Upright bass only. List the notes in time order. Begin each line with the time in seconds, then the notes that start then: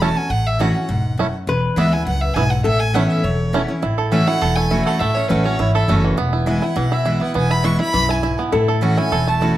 Already playing: E1
0.30 A1
0.89 E1
1.47 E1
1.77 D2
2.06 C#2
2.36 B1
2.65 A1
3.24 E1
3.83 A1
4.42 E1
5.01 A1
5.31 A1
5.59 G#1
5.88 F#1
6.18 E1
6.76 B1
7.36 E1
7.94 B1
8.53 A1
9.12 E1